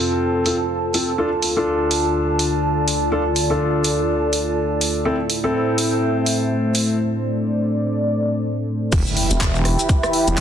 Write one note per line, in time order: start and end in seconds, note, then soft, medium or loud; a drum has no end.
0.00 1.14 F3 medium
0.00 0.44 C4 medium
0.00 1.14 C4 medium
0.00 0.44 F4 medium
0.00 5.05 F4 medium
0.00 0.44 A4 medium
0.00 6.99 A4 medium
0.00 8.88 A4 medium
0.00 2.75 C5 medium
0.00 5.01 F5 medium
0.00 6.99 A5 medium
0.46 0.55 C4 medium
0.46 0.55 F4 medium
0.46 0.55 A4 medium
0.46 open hi-hat loud
0.94 1.09 C4 medium
0.94 1.09 F4 medium
0.94 1.09 A4 medium
0.94 open hi-hat medium
1.18 5.02 D3 medium
1.18 1.28 D4 medium
1.18 5.02 D4 medium
1.18 1.28 F4 medium
1.18 1.28 A4 medium
1.42 open hi-hat loud
1.57 3.09 D4 medium
1.57 3.09 F4 medium
1.57 3.09 A4 medium
1.91 open hi-hat medium
2.28 6.32 D5 medium
2.39 open hi-hat medium
2.88 open hi-hat medium
3.12 3.21 D4 medium
3.12 3.21 F4 medium
3.12 3.21 A4 medium
3.36 open hi-hat medium
3.50 5.03 D4 medium
3.50 5.03 F4 medium
3.50 5.03 A4 medium
3.84 open hi-hat medium
4.33 open hi-hat loud
4.81 open hi-hat medium
5.05 8.89 A3 medium
5.05 5.15 C4 medium
5.05 5.15 E4 medium
5.05 6.99 E4 medium
5.05 5.15 A4 medium
5.05 8.89 C5 medium
5.05 6.97 E5 medium
5.29 6.99 C5 medium
5.29 open hi-hat medium
5.44 6.97 C4 medium
5.44 6.97 E4 medium
5.44 6.97 A4 medium
5.78 open hi-hat medium
6.26 open hi-hat medium
6.75 open hi-hat medium
6.99 8.91 D5 medium
8.92 9.04 E1 loud
8.92 10.40 E4 medium
8.92 10.40 E5 medium
8.92 10.40 G5 medium
8.92 10.40 B5 medium
8.92 kick loud
8.92 closed hi-hat medium
8.92 crash loud
8.92 impact medium
8.92 shaker medium
9.05 10.40 G4 medium
9.05 shaker soft
9.17 10.40 B4 medium
9.17 open hi-hat loud
9.31 9.77 E1 medium
9.31 10.40 G5 loud
9.31 closed hi-hat medium
9.31 shaker medium
9.41 kick loud
9.41 clap loud
9.41 closed hi-hat medium
9.41 shaker medium
9.55 shaker soft
9.65 cross-stick medium
9.65 open hi-hat loud
9.79 closed hi-hat medium
9.79 shaker medium
9.89 kick loud
9.89 closed hi-hat medium
9.89 shaker medium
10.03 cross-stick medium
10.03 shaker soft
10.13 open hi-hat loud
10.28 10.40 E1 loud
10.28 closed hi-hat medium
10.28 shaker medium